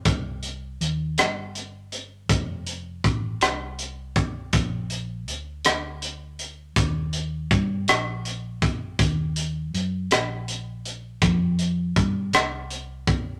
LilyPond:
<<
  \new Staff \with { instrumentName = "Fingered electric bass" } { \clef bass \time 6/8 \key ees \lydian \tempo 4. = 54 c,4 ees,8 g,,4. | f,,4 a,,8 c,4. | bes,,4 d,8 d,4. | ees,4 g,8 bes,,4. |
ees,4 ges,8 bes,,4. | f,4 g,8 c,4. | }
  \new DrumStaff \with { instrumentName = "Drums" } \drummode { \time 6/8 <hh bd>8 hh8 hh8 <hh ss>8 hh8 hh8 | <hh bd>8 hh8 <hh bd>8 <hh ss>8 hh8 <hh bd>8 | <hh bd>8 hh8 hh8 <hh ss>8 hh8 hh8 | <hh bd>8 hh8 <hh bd>8 <hh ss>8 hh8 <hh bd>8 |
<hh bd>8 hh8 hh8 <hh ss>8 hh8 hh8 | <hh bd>8 hh8 <hh bd>8 <hh ss>8 hh8 <hh bd>8 | }
>>